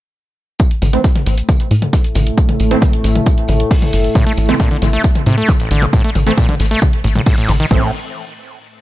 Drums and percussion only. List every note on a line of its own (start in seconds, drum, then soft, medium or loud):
0.59 kick loud
0.59 closed hi-hat medium
0.59 tambourine medium
0.71 closed hi-hat medium
0.82 open hi-hat loud
0.82 mid tom medium
0.82 tambourine medium
0.93 snare soft
0.93 closed hi-hat medium
1.04 kick loud
1.04 snare loud
1.04 closed hi-hat medium
1.04 tambourine medium
1.15 snare medium
1.15 closed hi-hat medium
1.15 mid tom medium
1.26 open hi-hat loud
1.26 tambourine medium
1.37 closed hi-hat soft
1.37 closed hi-hat medium
1.49 kick loud
1.49 closed hi-hat medium
1.49 mid tom medium
1.49 tambourine medium
1.60 closed hi-hat soft
1.60 closed hi-hat medium
1.71 open hi-hat loud
1.71 tambourine medium
1.82 closed hi-hat medium
1.82 mid tom medium
1.93 kick loud
1.93 snare loud
1.93 closed hi-hat medium
1.93 tambourine medium
2.04 closed hi-hat medium
2.04 closed hi-hat soft
2.15 snare soft
2.15 open hi-hat loud
2.15 mid tom medium
2.15 tambourine medium
2.27 closed hi-hat medium
2.38 kick loud
2.38 closed hi-hat medium
2.38 tambourine medium
2.49 closed hi-hat medium
2.49 mid tom medium
2.60 open hi-hat loud
2.60 tambourine medium
2.71 closed hi-hat medium
2.81 kick loud
2.81 snare loud
2.81 closed hi-hat medium
2.81 mid tom medium
2.81 tambourine medium
2.93 closed hi-hat medium
3.04 open hi-hat loud
3.04 tambourine medium
3.16 closed hi-hat medium
3.16 mid tom medium
3.26 kick loud
3.26 closed hi-hat medium
3.26 tambourine medium
3.38 closed hi-hat medium
3.48 open hi-hat loud
3.48 mid tom medium
3.48 tambourine medium
3.60 closed hi-hat medium
3.71 kick loud
3.71 snare loud
3.71 closed hi-hat medium
3.71 open hi-hat medium
3.82 closed hi-hat medium
3.82 mid tom medium
3.93 open hi-hat loud
3.93 tambourine medium
4.04 closed hi-hat medium
4.15 kick loud
4.15 closed hi-hat medium
4.15 mid tom medium
4.15 tambourine medium
4.27 closed hi-hat medium
4.37 open hi-hat loud
4.37 tambourine medium
4.49 snare soft
4.49 closed hi-hat medium
4.49 mid tom medium
4.60 kick loud
4.60 snare loud
4.60 closed hi-hat medium
4.60 tambourine medium
4.71 snare medium
4.71 closed hi-hat medium
4.82 open hi-hat loud
4.82 mid tom medium
4.82 tambourine medium
4.93 closed hi-hat soft
4.93 closed hi-hat medium
5.04 kick loud
5.04 closed hi-hat medium
5.04 tambourine medium
5.15 closed hi-hat soft
5.15 closed hi-hat medium
5.15 mid tom medium
5.26 open hi-hat loud
5.26 tambourine medium
5.38 closed hi-hat medium
5.49 kick loud
5.49 snare loud
5.49 closed hi-hat medium
5.49 mid tom medium
5.49 tambourine medium
5.60 closed hi-hat soft
5.60 closed hi-hat medium
5.70 snare soft
5.70 open hi-hat loud
5.70 tambourine medium
5.82 closed hi-hat medium
5.82 mid tom medium
5.93 kick loud
5.93 closed hi-hat medium
5.93 tambourine medium
6.04 closed hi-hat medium
6.15 open hi-hat loud
6.15 mid tom medium
6.15 tambourine medium
6.27 closed hi-hat medium
6.38 kick loud
6.38 snare loud
6.38 closed hi-hat medium
6.38 tambourine medium
6.49 closed hi-hat medium
6.49 mid tom medium
6.59 snare medium
6.59 open hi-hat loud
6.59 tambourine medium
6.65 snare loud
6.65 tambourine medium
6.71 snare medium
6.71 closed hi-hat medium
6.71 tambourine medium
6.76 snare medium
6.76 tambourine medium
6.82 kick loud
6.82 closed hi-hat medium
6.82 mid tom medium
6.82 tambourine medium
6.93 closed hi-hat medium
7.04 open hi-hat loud
7.04 tambourine medium
7.16 closed hi-hat medium
7.16 mid tom medium
7.26 kick loud
7.26 snare loud
7.26 closed hi-hat medium
7.26 open hi-hat medium
7.38 closed hi-hat medium
7.49 open hi-hat loud
7.49 mid tom medium
7.49 tambourine medium
7.60 closed hi-hat medium
7.71 kick loud
7.71 crash medium